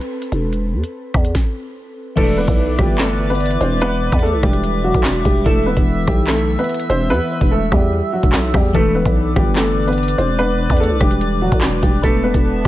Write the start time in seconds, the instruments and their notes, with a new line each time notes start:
Already playing: synth keys C4 A4 B4
0.01 closed hi-hat
0.22 closed hi-hat
0.32 808-style bass E1, closed hi-hat
0.53 closed hi-hat
0.73 808-style bass E2
0.83 closed hi-hat
1.14 808-style bass E2, kick, cross-stick
1.25 closed hi-hat
1.35 kick, snare
2.16 808-style bass E1, synth keys E3 E4 B4 D5, upright piano A3 A4, ambient pad B4 D5 E5 D6, kick, closed hi-hat, crash
2.38 upright piano B3 B4
2.48 808-style bass B1, kick, closed hi-hat
2.79 808-style bass G1, upright piano G3 G4, kick, cross-stick
2.98 upright piano A3 A4, snare, clap, closed hi-hat
3.30 upright piano B3 B4, closed hi-hat
3.35 closed hi-hat
3.40 closed hi-hat
3.45 closed hi-hat
3.51 closed hi-hat
3.61 808-style bass E1, upright piano C4 C5, closed hi-hat
3.81 upright piano B3 B4, closed hi-hat
4.12 808-style bass E2, kick, closed hi-hat
4.19 upright piano A3 A4, closed hi-hat
4.26 closed hi-hat
4.33 808-style bass B1
4.43 808-style bass E1, upright piano G3 G4, kick, cross-stick
4.53 closed hi-hat
4.64 closed hi-hat
4.84 upright piano F#3 F#4
4.94 808-style bass B1, kick, closed hi-hat
5.04 808-style bass E1, snare, clap
5.25 808-style bass E1, upright piano G3 G4, kick, closed hi-hat
5.44 808-style bass E1, synth keys E3 E4 E5, upright piano A3 A4, ambient pad E6, kick, closed hi-hat
5.66 upright piano B3 B4
5.77 808-style bass E1, kick, closed hi-hat
6.07 808-style bass B1, upright piano G3 G4, kick, cross-stick
6.27 upright piano A3 A4, snare, clap, closed hi-hat
6.59 upright piano B3 B4, closed hi-hat
6.64 closed hi-hat
6.69 closed hi-hat
6.74 closed hi-hat
6.80 closed hi-hat
6.90 808-style bass E1, upright piano C4 C5, closed hi-hat
7.10 808-style bass E2, upright piano B3 B4
7.41 808-style bass E1, kick
7.51 upright piano A3 A4
7.72 808-style bass E2, upright piano G3 G4, kick, cross-stick
8.13 upright piano F#3 F#4
8.23 808-style bass E1, kick
8.33 808-style bass B1, snare, clap
8.54 808-style bass E2, upright piano G3 G4, kick, cross-stick
8.73 808-style bass E1, synth keys E3 D4 B4, upright piano A3 A4, ambient pad B4 D5 D6, kick, closed hi-hat
8.95 upright piano B3 B4
9.05 808-style bass B1, kick, closed hi-hat
9.36 808-style bass G1, upright piano G3 G4, kick, cross-stick
9.56 upright piano A3 A4, snare, clap, closed hi-hat
9.87 upright piano B3 B4, closed hi-hat
9.93 closed hi-hat
9.98 closed hi-hat
10.03 closed hi-hat
10.08 closed hi-hat
10.18 808-style bass E1, upright piano C4 C5, closed hi-hat
10.39 upright piano B3 B4, closed hi-hat
10.70 808-style bass E2, kick, closed hi-hat
10.77 upright piano A4, closed hi-hat
10.81 upright piano A3, closed hi-hat
10.90 808-style bass B1
11.00 808-style bass E1, upright piano G3 G4, kick, cross-stick
11.11 closed hi-hat
11.21 closed hi-hat
11.42 upright piano F#3 F#4
11.52 808-style bass B1, kick, closed hi-hat
11.61 808-style bass E1, snare, clap
11.83 808-style bass E1, upright piano G3 G4, kick, closed hi-hat
12.02 808-style bass E1, upright piano A3 A4, synth keys B3 A4 B4, ambient pad B3 E5 A5, kick, closed hi-hat
12.24 upright piano B3 B4
12.34 808-style bass E1, kick, closed hi-hat